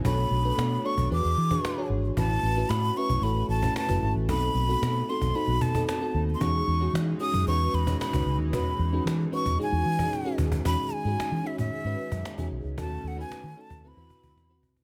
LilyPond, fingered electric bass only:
\new Staff \with { instrumentName = "Fingered electric bass" } { \clef bass \time 4/4 \key e \major \tempo 4 = 113 b,,8 b,,8 b,8 r16 b,,16 e,16 e,16 e8 r8 gis,,8 | a,,8 a,,8 a,8 r16 b,,16 a,,8 a,,8 r16 fis,,16 gis,,16 a,,16 | b,,8 b,,8 b,8 r16 b,,16 r16 b,,16 b,8 r8 dis,8 | e,8 e,8 e8 r16 fis,16 e,8 e,8 r16 cis,16 cis,16 dis,16 |
e,8 e,8 e8 r16 e,16 r16 e,16 e8 r8 dis,8 | e,16 r8 gis,16 r16 e16 r16 a,16 r16 gis,16 r16 fis,16 r16 e,16 b,,16 cis,16 | dis,8 dis,8 r16 dis16 r16 dis,16 d,16 e,16 r16 d,16 r8 c,8 | }